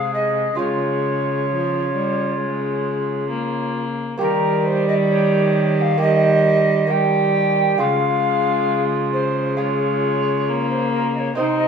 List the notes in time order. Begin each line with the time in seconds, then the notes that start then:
Already playing: C3 G#3 G#4 F5
0.14 D#5
0.55 C#3 G#3 F4 G#4 C#5
0.59 G#3
1.50 F3
1.95 G3
2.40 G#3
3.31 A#3
4.18 D#3 G3 A#3 G4 A#4
4.66 C5
4.88 D#5
5.10 C#5
5.78 F5 G5
5.98 G3 A#3 G4 D#5
6.87 G3 A#3 G4 G5
7.78 C#3 G#3 F4 G#4 F5
9.13 C5
9.57 G#3 F4 G#4 C#5
10.49 A#3
10.70 C5
10.93 A#4
11.15 D#5
11.19 C#5
11.35 C3 C4 D#4 C5 D#5
11.59 D#5